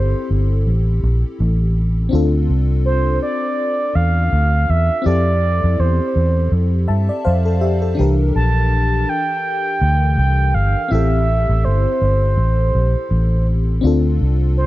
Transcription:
Already playing: fingered electric bass G1, fm electric piano C4 E4 G4 A4, soft synth lead C5
0.30 fingered electric bass G1
0.67 fingered electric bass A1
1.03 fingered electric bass A#1
1.40 fingered electric bass A1
2.09 fingered electric bass D2, fm electric piano C4 D4 F4
2.15 fm electric piano A4
2.49 fingered electric bass C2
2.85 soft synth lead C5
3.22 soft synth lead D5
3.95 fingered electric bass E2, soft synth lead F5
4.33 fingered electric bass D2
4.69 fingered electric bass E2, soft synth lead E5
5.02 fm electric piano C4 E4 G4
5.06 fingered electric bass F2, fm electric piano A4, soft synth lead D5
5.64 fingered electric bass F2
5.80 fingered electric bass E2, soft synth lead C5
6.16 fingered electric bass E2
6.52 fingered electric bass F2
6.88 fingered electric bass G2, fm electric piano E5 A5
7.09 fm electric piano D5
7.25 fingered electric bass F2, fm electric piano C5 F5
7.45 fm electric piano A4
7.61 fm electric piano G4 E5
7.82 fm electric piano A4
7.95 fm electric piano E3 D4
7.99 fingered electric bass C2, fm electric piano G4 A#4
8.35 fingered electric bass A#1, soft synth lead A5
9.09 soft synth lead G5
9.81 fingered electric bass D2
10.18 fingered electric bass C2, soft synth lead G5
10.54 fingered electric bass G1, soft synth lead F5
10.88 fingered electric bass A1, fm electric piano C4 E4 G4, soft synth lead E5
10.95 fm electric piano A4
11.49 fingered electric bass A1
11.64 fingered electric bass G1, soft synth lead C5
12.02 fingered electric bass G1
12.37 fingered electric bass A1
12.75 fingered electric bass A#1
13.11 fingered electric bass A1
13.81 fingered electric bass D2, fm electric piano C4 D4 F4
13.87 fm electric piano A4
14.21 fingered electric bass C2
14.57 soft synth lead C5

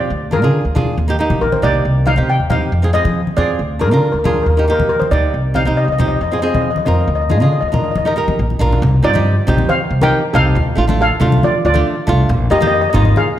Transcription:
Already playing: nylon-string guitar F4 G4, steel pan D5
0.10 upright bass D2
0.31 nylon-string guitar D4 F4 G#4, steel pan A#4, high conga
0.42 upright bass D3, nylon-string guitar D4 F4 G#4
0.65 upright bass D2
0.75 nylon-string guitar D4 F4 G#4, high conga, low conga
0.97 upright bass D#2, high conga
1.08 nylon-string guitar A#3 D#4 G4
1.19 nylon-string guitar A#3 D#4 G4
1.30 upright bass D#3, high conga, low conga
1.41 upright bass A#1, steel pan A#4
1.52 steel pan C5, high conga
1.62 upright bass C2, nylon-string guitar A#3 D#4 G4, steel pan D5, low conga
1.85 upright bass C2
2.06 nylon-string guitar C4 D#4 G4, steel pan F5, high conga
2.16 upright bass C3, nylon-string guitar C4 D#4 G4
2.30 steel pan G5
2.40 upright bass D#2
2.50 nylon-string guitar C4 D#4 G4, steel pan F5, high conga, low conga
2.72 upright bass F2
2.82 nylon-string guitar C4 F4 G#4
2.93 nylon-string guitar C4 F4 G#4, steel pan D#5
3.05 upright bass F3, high conga, low conga
3.27 high conga
3.37 upright bass F2, nylon-string guitar C4 F4 G#4, steel pan D5, low conga
3.59 upright bass D2
3.79 nylon-string guitar D4 F4 G#4, steel pan A#4, high conga
3.90 upright bass D3, nylon-string guitar D4 F4 A#4, steel pan A#4
3.97 steel pan A#4
4.05 steel pan A#4
4.12 upright bass D2, steel pan A#4
4.19 steel pan A#4
4.24 nylon-string guitar D4 F4 G#4, steel pan A#4, high conga, low conga
4.34 steel pan A#4
4.42 upright bass D#2, steel pan A#4
4.50 steel pan A#4
4.57 nylon-string guitar A#3 D#4 G4, steel pan A#4
4.64 nylon-string guitar A#3 D#4, steel pan A#4
4.70 nylon-string guitar G4, steel pan A#4
4.79 upright bass D#3, high conga, low conga
4.89 steel pan A#4
5.00 steel pan C5, high conga
5.11 upright bass D2, nylon-string guitar A#3 D#4 G4, steel pan D5, low conga
5.34 upright bass C2
5.54 nylon-string guitar C4 D#4 G4, steel pan F5, high conga
5.65 upright bass C3, nylon-string guitar C4 D#4 G4
5.77 steel pan D#5
5.84 upright bass C2, steel pan D#5
5.92 steel pan D#5
5.98 nylon-string guitar C4 D#4 G4, steel pan D#5, high conga, low conga
6.08 steel pan D#5
6.15 steel pan D#5
6.21 upright bass F2, steel pan D#5
6.31 nylon-string guitar C4 F4 G#4, steel pan D#5
6.39 nylon-string guitar C4 F4, steel pan D#5
6.43 nylon-string guitar G#4, steel pan D#5
6.54 upright bass F3, steel pan D#5, high conga, low conga
6.62 steel pan D#5
6.70 steel pan D#5
6.76 steel pan D#5, high conga
6.85 upright bass F2, nylon-string guitar C4 F4 A#4, steel pan D#5, low conga
6.93 steel pan D#5
7.01 steel pan D#5
7.07 upright bass D2, steel pan D#5
7.15 steel pan D#5
7.21 steel pan D#5
7.29 nylon-string guitar D4 F4 G#4, steel pan D#5, high conga
7.38 upright bass D3, nylon-string guitar D4 F4, steel pan D#5
7.42 nylon-string guitar G#4, steel pan D#5
7.53 steel pan D#5
7.61 upright bass D2, steel pan D#5
7.68 nylon-string guitar D4, steel pan D#5
7.73 nylon-string guitar F4 A#4, steel pan D#5, high conga, low conga
7.84 steel pan D#5
7.91 steel pan D#5
7.96 upright bass D#2, steel pan D#5, high conga
8.05 nylon-string guitar D#4 G4 A#4, steel pan D#5
8.13 nylon-string guitar D#4 G4, steel pan D#5
8.18 nylon-string guitar A#4
8.28 upright bass F2, high conga
8.39 upright bass A#1
8.50 high conga
8.59 upright bass A#1, nylon-string guitar D4 F4 A#4, low conga
8.72 low conga
8.82 upright bass C2, low conga
9.02 upright bass G2, nylon-string guitar C4 D#4 G4, steel pan F4 D5
9.13 nylon-string guitar C4 D#4 G4, high conga
9.47 upright bass A#1, nylon-string guitar C4 D#4 G4, low conga
9.58 high conga
9.69 steel pan C5 F5, high conga
9.90 upright bass C2
10.01 nylon-string guitar C4 D#4 G4, steel pan A#4 G5, high conga
10.33 upright bass C2, nylon-string guitar C4 D#4 G4, steel pan A4 F5, low conga
10.55 upright bass D2, low conga
10.75 upright bass A1, nylon-string guitar A3 D4 F4
10.88 nylon-string guitar A3 D4 F4, high conga
11.01 steel pan A4 F5
11.20 upright bass C2, nylon-string guitar A3 D4 F4, low conga
11.32 high conga
11.43 steel pan F4 D5, high conga
11.65 upright bass D2, steel pan F4 D5
11.74 nylon-string guitar A3 D4 F4, high conga
12.07 upright bass C2, nylon-string guitar A3 D4 F4, low conga
12.29 upright bass A#1, low conga
12.50 upright bass F2, nylon-string guitar A#3 D#4 F4, steel pan G4 D#5
12.59 nylon-string guitar A#3 D#4 G4, steel pan D#5, high conga
12.67 steel pan D#5
12.74 steel pan D#5
12.81 steel pan D#5
12.90 nylon-string guitar A#3 D#4, steel pan D#5
12.94 upright bass G#1, nylon-string guitar F4, steel pan D#5, low conga
13.05 steel pan D#5, high conga
13.16 steel pan G#4 F5, high conga

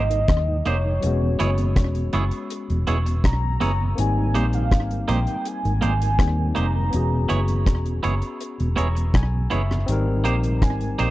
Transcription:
Already playing: fingered electric bass G#1, tine electric piano C3 G3 A#3 D#4, soft synth lead D#5
0.10 tonewheel organ G#2 D#3, closed hi-hat
0.28 fingered electric bass D#2, kick, cross-stick, closed hi-hat
0.48 tonewheel organ G#2 D#3
0.66 fingered electric bass F1, tonewheel organ G3 A#3 C4, clean electric guitar A#3 D#4 G4 C5, soft synth lead C#5, closed hi-hat
0.85 tonewheel organ G#2 D#3
1.00 fingered electric bass E1, tine electric piano F#3 B3 C#4, closed hi-hat
1.07 tine electric piano G#3 F#4
1.22 tonewheel organ E2 B2
1.39 fingered electric bass F#1, tonewheel organ E3 G#3 C#4, clean electric guitar B3 E4 G#4 C#5, closed hi-hat
1.58 tonewheel organ E2 B2, closed hi-hat
1.76 fingered electric bass E1, kick, cross-stick, closed hi-hat
1.95 tonewheel organ E2 B2, closed hi-hat
2.13 fingered electric bass F#1, tonewheel organ E3 G#3 C#4, clean electric guitar B3 E4 G#4 C#5, closed hi-hat
2.31 closed hi-hat
2.50 closed hi-hat
2.70 fingered electric bass E1, tonewheel organ E2 B2, closed hi-hat
2.87 fingered electric bass E1, tonewheel organ E3 G#3 C#4, clean electric guitar B3 E4 G#4 C#5, closed hi-hat
3.06 tonewheel organ E2 B2, muted clean electric guitar stroke, closed hi-hat
3.24 fingered electric bass B1, soft synth lead A#5, kick, cross-stick, closed hi-hat
3.44 tonewheel organ E2 B2
3.60 fingered electric bass F#1, tonewheel organ E3 G#3 C#4, clean electric guitar B3 E4 G#4 C#5, closed hi-hat
3.81 tonewheel organ E2 B2
3.95 fingered electric bass G#1, tine electric piano A#3 C4 D#4, closed hi-hat
4.00 tine electric piano G3, soft synth lead G#5
4.18 tonewheel organ G#2 D#3
4.35 fingered electric bass A#1, tonewheel organ G3 A#3 C4, clean electric guitar A#3 D#4 G4 C5, closed hi-hat
4.53 tonewheel organ G#2 D#3, soft synth lead F5, closed hi-hat
4.72 fingered electric bass G#1, kick, cross-stick, closed hi-hat
4.91 tonewheel organ G#2 D#3, closed hi-hat
5.08 fingered electric bass A#1, tonewheel organ G3 A#3 C4, clean electric guitar A#3 D#4 G4 C5, soft synth lead G5, closed hi-hat
5.27 tonewheel organ G#2 D#3, closed hi-hat
5.45 soft synth lead G#5, closed hi-hat
5.65 fingered electric bass G#1, tonewheel organ G#2 D#3, closed hi-hat
5.81 fingered electric bass G#1, tonewheel organ G3 A#3 C4, clean electric guitar A#3 D#4 G4 C5, closed hi-hat
6.02 tonewheel organ G#2 D#3, closed hi-hat
6.18 fingered electric bass D#2, tine electric piano G3 A#3 C4 D#4, kick, cross-stick, closed hi-hat
6.38 tonewheel organ G#2 D#3
6.55 fingered electric bass F1, tonewheel organ G3 A#3 C4, clean electric guitar A#3 D#4 G4 C5, soft synth lead A#5, closed hi-hat
6.75 tonewheel organ G#2 D#3
6.90 fingered electric bass E1, tine electric piano B3 C#4, closed hi-hat
6.95 tine electric piano F#4 G#4
7.12 tonewheel organ E2 B2
7.29 fingered electric bass F#1, tonewheel organ E3 G#3 C#4, clean electric guitar B3 E4 G#4 C#5, closed hi-hat
7.48 tonewheel organ E2 B2, closed hi-hat
7.66 fingered electric bass E1, kick, cross-stick, closed hi-hat
7.86 tonewheel organ E2 B2, closed hi-hat
8.03 fingered electric bass F#1, tonewheel organ E3 G#3 C#4, clean electric guitar B3 E4 G#4 C#5, closed hi-hat
8.22 closed hi-hat
8.41 closed hi-hat
8.60 fingered electric bass E1, tonewheel organ E2 B2, closed hi-hat
8.76 fingered electric bass E1, tonewheel organ E3 G#3 C#4, clean electric guitar B3 E4 G#4 C#5, tine electric piano A#5, closed hi-hat
8.95 tonewheel organ E2 B2, muted clean electric guitar stroke, closed hi-hat
9.14 fingered electric bass B1, tine electric piano G#5, kick, cross-stick, closed hi-hat
9.34 tonewheel organ E2 B2
9.50 fingered electric bass F#1, tonewheel organ E3 G#3 C#4, clean electric guitar B3 E4 G#4 C#5, tine electric piano E5, closed hi-hat
9.71 tonewheel organ E2 B2, cross-stick
9.86 fingered electric bass G#1, tine electric piano G3 C4 D#4, closed hi-hat
9.92 tine electric piano A#4
10.07 tonewheel organ G#2 D#3
10.24 fingered electric bass A#1, tonewheel organ G3 A#3 C4, clean electric guitar A#3 D#4 G4 C5, closed hi-hat
10.43 tonewheel organ G#2 D#3, closed hi-hat
10.57 soft synth lead A#5
10.62 fingered electric bass G#1, soft synth lead G#5, kick, cross-stick, closed hi-hat
10.81 tonewheel organ G#2 D#3, closed hi-hat
10.99 fingered electric bass A#1, tonewheel organ G3 A#3 C4, clean electric guitar A#3 D#4 G4 C5, soft synth lead G5, closed hi-hat

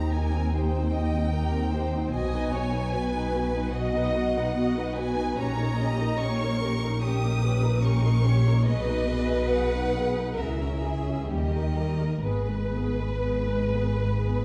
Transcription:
Already playing: cello section D#2, double bass section D#2, viola section C4 D#4, violin section G4 A#5
0.12 viola section D#4 G4, violin section A#4 G#5
0.34 viola section C4 D#4
0.52 viola section D#4 G4, violin section C5 G5
0.76 viola section C4 D#4
0.93 viola section D#4 G4, violin section D#5
1.14 viola section C4 D#4
1.31 viola section D#4 G4, violin section A#4
1.54 viola section C4 D#4
1.73 viola section D#4 G4, violin section C5
1.94 viola section C4 D#4
2.13 double bass section B1, cello section B2, viola section B3 F#4, violin section D#5 G#5
2.34 viola section D#4 B4
2.53 viola section B3 F#4, violin section C#5
2.73 viola section D#4 B4
2.92 viola section B3 F#4, violin section B4
3.15 viola section D#4 B4
3.34 viola section B3 F#4
3.54 viola section D#4 B4
3.73 viola section B3 F#4, violin section D#5 F#5
3.94 viola section D#4 B4
4.15 viola section B3 F#4
4.36 viola section D#4 B4
4.55 viola section B3 F#4, violin section D#5
4.77 viola section D#4 B4
4.96 viola section B3 F#4, violin section B4 G#5
5.17 viola section D#4 B4
5.38 double bass section A#1, cello section A#2, viola section C#4 G4, violin section C#5 A#5
5.59 viola section D#4 A#4
5.79 viola section C#4 G4, violin section D#5
6.00 viola section D#4 A#4
6.19 viola section C#4 G4, violin section C#5 C#6
6.42 viola section D#4 A#4
6.60 viola section C#4 G4, violin section A#4
6.82 viola section D#4 A#4
7.00 viola section C#4 G4, violin section G4 D#6
7.22 viola section D#4 A#4
7.41 viola section C#4 G4, violin section B4
7.62 viola section D#4 A#4
7.81 viola section C#4 G4, violin section A#4 C#6
8.03 viola section D#4 A#4
8.24 viola section C#4 G4, violin section C#5
8.45 viola section D#4 A#4
8.65 double bass section B1, cello section B2, viola section B3 G#4, violin section B4 D#5
8.87 viola section D#4 B4
9.09 viola section B3 G#4
9.31 viola section D#4 B4
9.51 viola section B3 G#4, violin section F#5
9.75 viola section D#4 B4
9.95 viola section B3 G#4
10.19 viola section D#4 B4
10.36 double bass section C#2, cello section C#3, violin section A#4 E5
10.40 viola section E4 G#4
10.62 viola section C#4 E4
10.82 viola section E4 G#4, violin section G#4
11.07 viola section C#4 E4
11.27 double bass section D#2, cello section D#3, viola section G3 G4, violin section G4 D#5
11.52 viola section A#3 A#4
11.75 viola section G3 G4, violin section A#4
11.99 viola section A#3 A#4
12.21 double bass section G#1, cello section G#2, viola section B3 G#4, violin section B4
12.49 viola section G#3 B4
12.72 viola section B3 G#4
12.97 viola section G#3 B4
13.21 viola section B3 G#4
13.46 viola section G#3 B4
13.70 viola section B3 G#4
13.95 viola section G#3 B4
14.19 viola section B3 G#4

